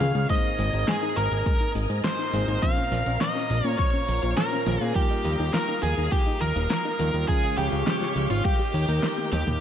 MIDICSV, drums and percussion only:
0, 0, Header, 1, 2, 480
1, 0, Start_track
1, 0, Tempo, 582524
1, 245, Time_signature, 4, 2, 24, 8
1, 7915, End_track
2, 0, Start_track
2, 0, Title_t, "Drums"
2, 4, Note_on_c, 9, 46, 77
2, 4, Note_on_c, 9, 47, 93
2, 4, Note_on_c, 9, 54, 66
2, 87, Note_off_c, 9, 46, 0
2, 87, Note_off_c, 9, 47, 0
2, 87, Note_off_c, 9, 54, 0
2, 124, Note_on_c, 9, 42, 54
2, 124, Note_on_c, 9, 54, 31
2, 207, Note_off_c, 9, 42, 0
2, 207, Note_off_c, 9, 54, 0
2, 244, Note_on_c, 9, 42, 52
2, 244, Note_on_c, 9, 54, 40
2, 245, Note_on_c, 9, 36, 121
2, 326, Note_off_c, 9, 42, 0
2, 326, Note_off_c, 9, 54, 0
2, 328, Note_off_c, 9, 36, 0
2, 365, Note_on_c, 9, 42, 26
2, 365, Note_on_c, 9, 54, 29
2, 447, Note_off_c, 9, 42, 0
2, 447, Note_off_c, 9, 54, 0
2, 484, Note_on_c, 9, 46, 76
2, 484, Note_on_c, 9, 54, 70
2, 566, Note_off_c, 9, 46, 0
2, 566, Note_off_c, 9, 54, 0
2, 605, Note_on_c, 9, 42, 51
2, 605, Note_on_c, 9, 54, 31
2, 687, Note_off_c, 9, 42, 0
2, 687, Note_off_c, 9, 54, 0
2, 724, Note_on_c, 9, 38, 118
2, 724, Note_on_c, 9, 42, 52
2, 724, Note_on_c, 9, 54, 39
2, 807, Note_off_c, 9, 38, 0
2, 807, Note_off_c, 9, 42, 0
2, 807, Note_off_c, 9, 54, 0
2, 845, Note_on_c, 9, 42, 26
2, 845, Note_on_c, 9, 54, 29
2, 927, Note_off_c, 9, 42, 0
2, 927, Note_off_c, 9, 54, 0
2, 963, Note_on_c, 9, 46, 78
2, 963, Note_on_c, 9, 54, 67
2, 1045, Note_off_c, 9, 46, 0
2, 1045, Note_off_c, 9, 54, 0
2, 1084, Note_on_c, 9, 42, 48
2, 1084, Note_on_c, 9, 54, 28
2, 1167, Note_off_c, 9, 42, 0
2, 1167, Note_off_c, 9, 54, 0
2, 1204, Note_on_c, 9, 42, 52
2, 1204, Note_on_c, 9, 54, 42
2, 1205, Note_on_c, 9, 36, 127
2, 1286, Note_off_c, 9, 42, 0
2, 1286, Note_off_c, 9, 54, 0
2, 1287, Note_off_c, 9, 36, 0
2, 1323, Note_on_c, 9, 42, 26
2, 1406, Note_off_c, 9, 42, 0
2, 1444, Note_on_c, 9, 46, 74
2, 1444, Note_on_c, 9, 54, 69
2, 1526, Note_off_c, 9, 46, 0
2, 1526, Note_off_c, 9, 54, 0
2, 1565, Note_on_c, 9, 42, 51
2, 1565, Note_on_c, 9, 54, 30
2, 1647, Note_off_c, 9, 42, 0
2, 1647, Note_off_c, 9, 54, 0
2, 1684, Note_on_c, 9, 38, 125
2, 1684, Note_on_c, 9, 42, 50
2, 1684, Note_on_c, 9, 54, 42
2, 1766, Note_off_c, 9, 38, 0
2, 1766, Note_off_c, 9, 42, 0
2, 1766, Note_off_c, 9, 54, 0
2, 1805, Note_on_c, 9, 42, 24
2, 1805, Note_on_c, 9, 54, 26
2, 1887, Note_off_c, 9, 42, 0
2, 1887, Note_off_c, 9, 54, 0
2, 1924, Note_on_c, 9, 46, 75
2, 1924, Note_on_c, 9, 54, 70
2, 2007, Note_off_c, 9, 46, 0
2, 2007, Note_off_c, 9, 54, 0
2, 2045, Note_on_c, 9, 42, 54
2, 2045, Note_on_c, 9, 54, 31
2, 2127, Note_off_c, 9, 42, 0
2, 2127, Note_off_c, 9, 54, 0
2, 2163, Note_on_c, 9, 36, 115
2, 2165, Note_on_c, 9, 42, 54
2, 2165, Note_on_c, 9, 54, 41
2, 2246, Note_off_c, 9, 36, 0
2, 2248, Note_off_c, 9, 42, 0
2, 2248, Note_off_c, 9, 54, 0
2, 2284, Note_on_c, 9, 42, 26
2, 2284, Note_on_c, 9, 54, 30
2, 2367, Note_off_c, 9, 42, 0
2, 2367, Note_off_c, 9, 54, 0
2, 2406, Note_on_c, 9, 46, 79
2, 2406, Note_on_c, 9, 54, 74
2, 2488, Note_off_c, 9, 46, 0
2, 2488, Note_off_c, 9, 54, 0
2, 2524, Note_on_c, 9, 42, 52
2, 2524, Note_on_c, 9, 54, 31
2, 2607, Note_off_c, 9, 42, 0
2, 2607, Note_off_c, 9, 54, 0
2, 2645, Note_on_c, 9, 38, 115
2, 2645, Note_on_c, 9, 42, 50
2, 2645, Note_on_c, 9, 54, 41
2, 2727, Note_off_c, 9, 38, 0
2, 2727, Note_off_c, 9, 42, 0
2, 2727, Note_off_c, 9, 54, 0
2, 2765, Note_on_c, 9, 42, 26
2, 2765, Note_on_c, 9, 54, 30
2, 2847, Note_off_c, 9, 42, 0
2, 2847, Note_off_c, 9, 54, 0
2, 2884, Note_on_c, 9, 46, 77
2, 2884, Note_on_c, 9, 54, 73
2, 2966, Note_off_c, 9, 46, 0
2, 2966, Note_off_c, 9, 54, 0
2, 3004, Note_on_c, 9, 42, 49
2, 3004, Note_on_c, 9, 54, 28
2, 3086, Note_off_c, 9, 42, 0
2, 3086, Note_off_c, 9, 54, 0
2, 3123, Note_on_c, 9, 36, 120
2, 3124, Note_on_c, 9, 42, 53
2, 3124, Note_on_c, 9, 54, 43
2, 3206, Note_off_c, 9, 36, 0
2, 3206, Note_off_c, 9, 42, 0
2, 3206, Note_off_c, 9, 54, 0
2, 3245, Note_on_c, 9, 42, 25
2, 3327, Note_off_c, 9, 42, 0
2, 3365, Note_on_c, 9, 46, 74
2, 3365, Note_on_c, 9, 54, 72
2, 3447, Note_off_c, 9, 46, 0
2, 3447, Note_off_c, 9, 54, 0
2, 3485, Note_on_c, 9, 42, 50
2, 3485, Note_on_c, 9, 54, 31
2, 3567, Note_off_c, 9, 42, 0
2, 3567, Note_off_c, 9, 54, 0
2, 3605, Note_on_c, 9, 38, 116
2, 3605, Note_on_c, 9, 42, 52
2, 3605, Note_on_c, 9, 54, 43
2, 3688, Note_off_c, 9, 38, 0
2, 3688, Note_off_c, 9, 42, 0
2, 3688, Note_off_c, 9, 54, 0
2, 3725, Note_on_c, 9, 42, 26
2, 3725, Note_on_c, 9, 54, 28
2, 3807, Note_off_c, 9, 42, 0
2, 3807, Note_off_c, 9, 54, 0
2, 3845, Note_on_c, 9, 46, 77
2, 3845, Note_on_c, 9, 47, 99
2, 3845, Note_on_c, 9, 54, 71
2, 3927, Note_off_c, 9, 46, 0
2, 3927, Note_off_c, 9, 47, 0
2, 3927, Note_off_c, 9, 54, 0
2, 3965, Note_on_c, 9, 42, 54
2, 3965, Note_on_c, 9, 54, 32
2, 4047, Note_off_c, 9, 42, 0
2, 4047, Note_off_c, 9, 54, 0
2, 4083, Note_on_c, 9, 36, 118
2, 4085, Note_on_c, 9, 42, 54
2, 4085, Note_on_c, 9, 54, 41
2, 4166, Note_off_c, 9, 36, 0
2, 4167, Note_off_c, 9, 42, 0
2, 4167, Note_off_c, 9, 54, 0
2, 4203, Note_on_c, 9, 42, 27
2, 4203, Note_on_c, 9, 54, 29
2, 4286, Note_off_c, 9, 42, 0
2, 4286, Note_off_c, 9, 54, 0
2, 4323, Note_on_c, 9, 46, 82
2, 4323, Note_on_c, 9, 54, 76
2, 4406, Note_off_c, 9, 46, 0
2, 4406, Note_off_c, 9, 54, 0
2, 4445, Note_on_c, 9, 42, 55
2, 4445, Note_on_c, 9, 54, 33
2, 4527, Note_off_c, 9, 42, 0
2, 4527, Note_off_c, 9, 54, 0
2, 4564, Note_on_c, 9, 38, 110
2, 4564, Note_on_c, 9, 42, 53
2, 4564, Note_on_c, 9, 54, 42
2, 4647, Note_off_c, 9, 38, 0
2, 4647, Note_off_c, 9, 42, 0
2, 4647, Note_off_c, 9, 54, 0
2, 4685, Note_on_c, 9, 42, 28
2, 4685, Note_on_c, 9, 54, 30
2, 4768, Note_off_c, 9, 42, 0
2, 4768, Note_off_c, 9, 54, 0
2, 4805, Note_on_c, 9, 46, 81
2, 4805, Note_on_c, 9, 54, 72
2, 4887, Note_off_c, 9, 46, 0
2, 4887, Note_off_c, 9, 54, 0
2, 4925, Note_on_c, 9, 42, 47
2, 4925, Note_on_c, 9, 54, 29
2, 5007, Note_off_c, 9, 42, 0
2, 5007, Note_off_c, 9, 54, 0
2, 5043, Note_on_c, 9, 36, 119
2, 5045, Note_on_c, 9, 42, 56
2, 5045, Note_on_c, 9, 54, 44
2, 5126, Note_off_c, 9, 36, 0
2, 5127, Note_off_c, 9, 42, 0
2, 5127, Note_off_c, 9, 54, 0
2, 5165, Note_on_c, 9, 42, 27
2, 5248, Note_off_c, 9, 42, 0
2, 5284, Note_on_c, 9, 46, 79
2, 5284, Note_on_c, 9, 54, 71
2, 5366, Note_off_c, 9, 46, 0
2, 5366, Note_off_c, 9, 54, 0
2, 5405, Note_on_c, 9, 42, 51
2, 5405, Note_on_c, 9, 54, 31
2, 5487, Note_off_c, 9, 42, 0
2, 5487, Note_off_c, 9, 54, 0
2, 5525, Note_on_c, 9, 38, 121
2, 5525, Note_on_c, 9, 42, 52
2, 5525, Note_on_c, 9, 54, 44
2, 5607, Note_off_c, 9, 38, 0
2, 5607, Note_off_c, 9, 42, 0
2, 5607, Note_off_c, 9, 54, 0
2, 5646, Note_on_c, 9, 42, 25
2, 5646, Note_on_c, 9, 54, 29
2, 5728, Note_off_c, 9, 42, 0
2, 5728, Note_off_c, 9, 54, 0
2, 5763, Note_on_c, 9, 46, 78
2, 5763, Note_on_c, 9, 54, 72
2, 5845, Note_off_c, 9, 46, 0
2, 5845, Note_off_c, 9, 54, 0
2, 5884, Note_on_c, 9, 42, 54
2, 5884, Note_on_c, 9, 54, 31
2, 5967, Note_off_c, 9, 42, 0
2, 5967, Note_off_c, 9, 54, 0
2, 6003, Note_on_c, 9, 36, 117
2, 6003, Note_on_c, 9, 42, 53
2, 6003, Note_on_c, 9, 54, 43
2, 6085, Note_off_c, 9, 36, 0
2, 6086, Note_off_c, 9, 42, 0
2, 6086, Note_off_c, 9, 54, 0
2, 6124, Note_on_c, 9, 42, 28
2, 6124, Note_on_c, 9, 54, 30
2, 6207, Note_off_c, 9, 42, 0
2, 6207, Note_off_c, 9, 54, 0
2, 6243, Note_on_c, 9, 46, 87
2, 6243, Note_on_c, 9, 54, 73
2, 6325, Note_off_c, 9, 46, 0
2, 6325, Note_off_c, 9, 54, 0
2, 6364, Note_on_c, 9, 42, 54
2, 6364, Note_on_c, 9, 54, 31
2, 6446, Note_off_c, 9, 42, 0
2, 6446, Note_off_c, 9, 54, 0
2, 6484, Note_on_c, 9, 38, 113
2, 6484, Note_on_c, 9, 42, 55
2, 6484, Note_on_c, 9, 54, 43
2, 6567, Note_off_c, 9, 38, 0
2, 6567, Note_off_c, 9, 42, 0
2, 6567, Note_off_c, 9, 54, 0
2, 6605, Note_on_c, 9, 38, 38
2, 6605, Note_on_c, 9, 42, 28
2, 6605, Note_on_c, 9, 54, 30
2, 6687, Note_off_c, 9, 38, 0
2, 6687, Note_off_c, 9, 42, 0
2, 6687, Note_off_c, 9, 54, 0
2, 6724, Note_on_c, 9, 46, 82
2, 6724, Note_on_c, 9, 54, 70
2, 6806, Note_off_c, 9, 46, 0
2, 6806, Note_off_c, 9, 54, 0
2, 6843, Note_on_c, 9, 42, 52
2, 6843, Note_on_c, 9, 54, 29
2, 6925, Note_off_c, 9, 42, 0
2, 6925, Note_off_c, 9, 54, 0
2, 6962, Note_on_c, 9, 36, 119
2, 6963, Note_on_c, 9, 42, 53
2, 6963, Note_on_c, 9, 54, 42
2, 7045, Note_off_c, 9, 36, 0
2, 7045, Note_off_c, 9, 42, 0
2, 7045, Note_off_c, 9, 54, 0
2, 7082, Note_on_c, 9, 42, 29
2, 7082, Note_on_c, 9, 54, 30
2, 7164, Note_off_c, 9, 42, 0
2, 7164, Note_off_c, 9, 54, 0
2, 7202, Note_on_c, 9, 46, 84
2, 7202, Note_on_c, 9, 54, 72
2, 7285, Note_off_c, 9, 46, 0
2, 7285, Note_off_c, 9, 54, 0
2, 7322, Note_on_c, 9, 42, 54
2, 7322, Note_on_c, 9, 54, 30
2, 7405, Note_off_c, 9, 42, 0
2, 7405, Note_off_c, 9, 54, 0
2, 7442, Note_on_c, 9, 38, 113
2, 7442, Note_on_c, 9, 42, 54
2, 7442, Note_on_c, 9, 48, 63
2, 7442, Note_on_c, 9, 54, 44
2, 7524, Note_off_c, 9, 38, 0
2, 7524, Note_off_c, 9, 42, 0
2, 7524, Note_off_c, 9, 48, 0
2, 7524, Note_off_c, 9, 54, 0
2, 7562, Note_on_c, 9, 42, 26
2, 7562, Note_on_c, 9, 48, 63
2, 7562, Note_on_c, 9, 54, 28
2, 7645, Note_off_c, 9, 42, 0
2, 7645, Note_off_c, 9, 48, 0
2, 7645, Note_off_c, 9, 54, 0
2, 7683, Note_on_c, 9, 46, 81
2, 7683, Note_on_c, 9, 47, 89
2, 7683, Note_on_c, 9, 54, 71
2, 7765, Note_off_c, 9, 46, 0
2, 7765, Note_off_c, 9, 47, 0
2, 7765, Note_off_c, 9, 54, 0
2, 7804, Note_on_c, 9, 42, 58
2, 7804, Note_on_c, 9, 45, 89
2, 7804, Note_on_c, 9, 54, 31
2, 7886, Note_off_c, 9, 42, 0
2, 7886, Note_off_c, 9, 45, 0
2, 7886, Note_off_c, 9, 54, 0
2, 7915, End_track
0, 0, End_of_file